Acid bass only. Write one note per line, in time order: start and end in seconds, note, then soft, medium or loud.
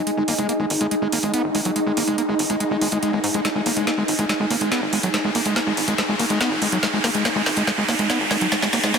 0.07 0.10 G#3 medium
0.17 0.23 G#3 medium
0.28 0.34 A#3 medium
0.38 0.47 G#3 medium
0.49 0.53 A#3 medium
0.60 0.65 G#3 medium
0.81 0.87 G#3 loud
0.91 0.95 G#3 medium
1.02 1.08 G#3 medium
1.12 1.18 A#3 medium
1.23 1.32 G#3 medium
1.34 1.42 B3 medium
1.55 1.61 G#3 medium
1.65 1.71 F#3 medium
1.76 1.79 G#3 medium
1.86 1.92 G#3 medium
1.97 2.03 A#3 medium
2.08 2.16 G#3 medium
2.18 2.22 A#3 medium
2.29 2.35 G#3 medium
2.50 2.56 G#3 loud
2.60 2.64 G#3 medium
2.71 2.77 G#3 medium
2.82 2.87 G#3 loud
2.92 2.98 G#3 loud
3.03 3.11 G#3 loud
3.13 3.19 G#3 medium
3.34 3.40 G#3 loud
3.45 3.48 G#3 medium
3.55 3.61 G#3 medium
3.66 3.72 A#3 medium
3.77 3.85 G#3 medium
3.87 3.91 A#3 medium
3.98 4.04 G#3 medium
4.19 4.25 G#3 loud
4.29 4.33 G#3 medium
4.40 4.46 G#3 medium
4.50 4.56 A#3 medium
4.61 4.70 G#3 medium
4.72 4.80 B3 loud
4.93 4.99 G#3 medium
5.03 5.09 F#3 medium
5.14 5.17 G#3 medium
5.24 5.30 G#3 medium
5.35 5.41 A#3 medium
5.46 5.54 G#3 medium
5.56 5.60 A#3 medium
5.67 5.73 G#3 medium
5.88 5.94 G#3 loud
5.98 6.02 G#3 medium
6.09 6.15 G#3 medium
6.19 6.25 A#3 medium
6.30 6.39 G#3 medium
6.41 6.49 B3 loud
6.62 6.68 G#3 medium
6.72 6.78 F#3 medium
6.83 6.86 G#3 medium
6.93 6.99 G#3 medium
7.04 7.10 A#3 medium
7.15 7.23 G#3 medium
7.25 7.29 A#3 medium
7.36 7.42 G#3 medium
7.57 7.63 G#3 loud
7.67 7.71 G#3 medium
7.78 7.84 G#3 medium
7.89 7.94 A#3 medium
7.99 8.08 G#3 medium
8.10 8.18 B3 loud
8.31 8.37 G#3 medium
8.41 8.47 F#3 medium
8.52 8.55 G#3 medium
8.62 8.68 G#3 medium
8.73 8.79 A#3 medium
8.84 8.92 G#3 medium
8.94 8.98 A#3 medium